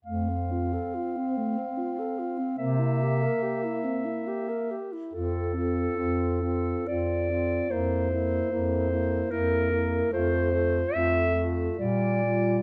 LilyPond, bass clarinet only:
\new Staff \with { instrumentName = "Bass clarinet" } { \clef bass \time 3/4 \key f \major \tempo 4 = 72 f,4 r2 | c4 r2 | f,4 f,4 f,4 | f,4 f,4 f,4 |
f,4 f,4 bes,4 | }